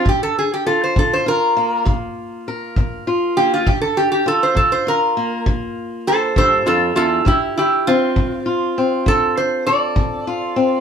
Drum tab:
BD |o--o--o--o--|o--o--o--o--|o--o--o--o--|